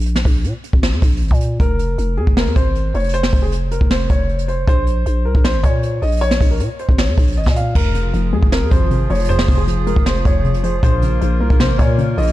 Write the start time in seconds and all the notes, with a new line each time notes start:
Already playing: A#1
0.01 closed hi-hat
0.06 closed hi-hat
0.16 snare
0.25 A#1, kick, open hi-hat
0.44 A#2, closed hi-hat
0.64 closed hi-hat
0.73 G#1, kick
0.83 snare
0.92 F2
1.02 A#1, kick, closed hi-hat
1.07 closed hi-hat
1.12 closed hi-hat
1.17 closed hi-hat
1.21 G#1, closed hi-hat
1.28 A#2, kick, closed hi-hat
1.34 closed hi-hat
1.41 closed hi-hat
1.60 F1 A#4, kick, closed hi-hat
1.79 closed hi-hat
1.98 F1, closed hi-hat
2.17 F2 G#4
2.27 F1, kick
2.37 A#4, snare
2.46 F2
2.56 G#1 C5, kick, closed hi-hat
2.75 closed hi-hat
2.94 F1 C#5, closed hi-hat
2.99 closed hi-hat
3.04 closed hi-hat
3.09 closed hi-hat
3.14 C5, closed hi-hat
3.23 snare
3.33 F1, kick, open hi-hat
3.42 G#4
3.52 closed hi-hat
3.71 A#4, closed hi-hat
3.81 F1, kick
3.91 C5, snare
4.10 F1 C#5, kick, closed hi-hat
4.29 closed hi-hat
4.39 closed hi-hat
4.48 C5, closed hi-hat
4.67 A#1 C5, kick, closed hi-hat
4.87 closed hi-hat
5.06 A#1, closed hi-hat
5.25 C2 A#4
5.35 A#1, kick
5.44 C5, snare
5.54 G#1
5.63 A#2 C#5, kick, closed hi-hat
5.83 closed hi-hat
6.02 A#1 D#5, closed hi-hat
6.07 closed hi-hat
6.12 closed hi-hat
6.17 closed hi-hat
6.21 C#5, closed hi-hat
6.31 snare
6.41 A#1, kick, open hi-hat
6.51 A#4
6.60 A#2, closed hi-hat
6.79 C5, closed hi-hat
6.89 G#1, kick
6.98 C#5, snare
7.08 F2
7.18 A#1, kick, closed hi-hat
7.22 closed hi-hat
7.27 closed hi-hat
7.32 closed hi-hat
7.37 G#1 D#5, closed hi-hat
7.43 A#2, kick, snare, closed hi-hat
7.50 closed hi-hat
7.56 F5, closed hi-hat
7.75 F1 F2 F3 F4 G#4 A#4, kick, crash
7.94 C3, closed hi-hat
8.14 F1 F3, closed hi-hat
8.33 F2 G#3 G#4
8.43 F1, kick
8.52 C4 A#4, snare
8.62 F2
8.71 G#1 F2 C5, kick, closed hi-hat
8.91 C3, closed hi-hat
9.10 F1 F3 C#5, closed hi-hat
9.15 closed hi-hat
9.20 closed hi-hat
9.24 closed hi-hat
9.29 F2 C5
9.39 snare
9.48 F1 C3, kick, open hi-hat
9.57 G#4
9.68 F3, closed hi-hat
9.87 G#3 A#4, closed hi-hat
9.96 F1, kick
10.06 C5, snare
10.25 F1 F2 C#5, kick, closed hi-hat
10.45 C3, closed hi-hat
10.54 closed hi-hat
10.64 F3 C5, closed hi-hat
10.83 A#1 A#2 A#3 F4 A#4 C5, kick, closed hi-hat
11.02 C#3, closed hi-hat
11.21 A#1 F3, closed hi-hat
11.40 C2 A#3 A#4
11.50 A#1, kick
11.60 C3 C5, snare
11.69 G#1
11.79 A#2 C#5, kick, closed hi-hat
11.98 C#3, closed hi-hat
12.18 A#1 F3 D#5, closed hi-hat
12.22 closed hi-hat
12.27 closed hi-hat